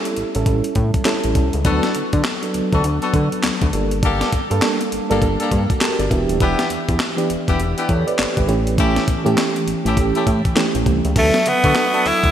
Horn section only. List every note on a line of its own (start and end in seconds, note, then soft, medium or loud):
1.65 1.93 B3 medium
1.65 1.93 D4 medium
1.65 1.93 F#4 medium
1.65 1.93 A4 loud
2.72 2.84 B3 medium
2.72 2.84 D4 medium
2.72 2.84 F#4 medium
2.72 2.84 A4 medium
3.02 3.13 B3 medium
3.02 3.13 D4 medium
3.02 3.13 F#4 medium
3.02 3.14 A4 medium
4.03 4.31 A#3 medium
4.03 4.31 D4 medium
4.03 4.31 G4 medium
4.03 4.31 A4 medium
5.10 5.21 A#3 medium
5.10 5.21 D4 medium
5.10 5.21 G4 medium
5.10 5.21 A4 medium
5.40 5.51 A#3 medium
5.40 5.51 D4 medium
5.40 5.51 G4 medium
5.40 5.51 A4 medium
6.40 6.68 B3 medium
6.40 6.68 D4 medium
6.40 6.68 E4 medium
6.40 6.68 G4 loud
7.48 7.59 B3 medium
7.48 7.59 D4 medium
7.48 7.59 E4 medium
7.48 7.59 G4 medium
7.77 7.88 B3 medium
7.77 7.89 D4 medium
7.77 7.89 E4 medium
7.77 7.89 G4 medium
8.78 9.06 A3 medium
8.78 9.06 C#4 medium
8.78 9.06 E4 medium
8.78 9.06 G4 medium
9.85 9.96 A3 medium
9.85 9.97 C#4 medium
9.85 9.97 E4 medium
9.85 9.97 G4 medium
10.15 10.26 A3 medium
10.15 10.26 C#4 medium
10.15 10.26 E4 medium
10.15 10.26 G4 medium
11.63 11.75 B3 medium
11.63 11.75 D4 medium
11.63 11.75 F#4 medium
11.63 11.75 A4 medium
11.93 12.04 B3 medium
11.93 12.04 D4 medium
11.93 12.04 F#4 medium
11.93 12.04 A4 medium